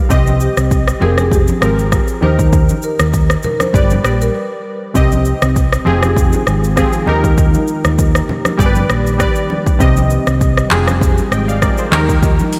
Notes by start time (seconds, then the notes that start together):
Already playing: G3 G4 B4 D5 F5
0.09 C2 C3 C4 G4 D#5, kick, low conga, shaker
0.27 high conga, shaker
0.40 G4, shaker
0.57 C2, cross-stick, shaker
0.71 kick, shaker
0.88 cross-stick, shaker
1.00 F1 F3 C4 G4 G#4 A#4, high conga, low conga
1.18 G#4, cross-stick, high conga, shaker
1.31 G4, kick, low conga, shaker
1.48 high conga, shaker
1.60 G#1 F3 C4 G4 A#4, cross-stick, shaker
1.79 shaker
1.92 kick, cross-stick, shaker
2.08 shaker
2.21 D#2 D#3 D#4 G4 A#4 C5, high conga
2.39 kick, shaker
2.53 kick, low conga, shaker
2.69 high conga, shaker
2.82 A#4, shaker
2.99 D#2, cross-stick, shaker
3.14 kick, shaker
3.30 cross-stick, shaker
3.43 A#4, high conga, low conga, shaker
3.60 C5, cross-stick, high conga, shaker
3.73 G1 G3 G4 B4 D5, kick, low conga, shaker
3.90 high conga, shaker
4.03 A#1 G3 G4 B4 D5, cross-stick, shaker
4.21 A#4, shaker
4.35 B4
4.94 C2 C3 D#3 C4 D#4 G4 D#5, kick, low conga, shaker
5.12 high conga, shaker
5.25 shaker
5.42 C2, cross-stick, shaker
5.56 kick, shaker
5.73 cross-stick, shaker
5.85 F1 F3 G#3 C4 F4 G4 G#4, high conga, low conga
6.03 cross-stick, high conga, shaker
6.16 kick, low conga, shaker
6.33 high conga, shaker
6.47 G#1, cross-stick, shaker
6.64 shaker
6.76 F3 C4 G4 G#4, kick, cross-stick, shaker
6.93 shaker
7.06 D#2 D#3 A#3 D#4 G4 A#4, high conga
7.24 kick, shaker
7.38 kick, low conga, shaker
7.54 high conga, shaker
7.68 shaker
7.85 D#2, cross-stick, shaker
7.99 kick, shaker
8.15 cross-stick, shaker
8.29 high conga, low conga
8.45 cross-stick, high conga, shaker
8.57 G1 G3 D4 G4 G#4 B4 D5, kick, low conga, shaker
8.66 B4
8.75 high conga, shaker
8.89 A#1, cross-stick, shaker
9.07 shaker
9.18 G3 G4 B4 D5, kick, cross-stick, shaker
9.35 shaker
9.50 high conga
9.66 kick, shaker
9.79 C2 C3 C4 D#4 G4 D#5, kick, low conga, shaker
9.97 high conga, shaker
10.10 shaker
10.27 C2, cross-stick, shaker
10.41 kick, shaker
10.57 cross-stick, shaker
10.70 F1 F3 G#3 C4 F4 G4 G#4, clap, high conga, low conga
10.88 cross-stick, high conga, shaker
11.01 kick, low conga, shaker
11.18 high conga, shaker
11.31 G#1 D#5 G5, cross-stick, shaker
11.48 D5 F5, shaker
11.62 A#4 D5, kick, cross-stick, shaker
11.78 G#4 C5, shaker
11.91 D#2 D#3 A#3 D#4 G4 A#4, clap, high conga
12.09 kick, shaker
12.23 kick, low conga, shaker
12.39 high conga, shaker
12.53 open hi-hat, shaker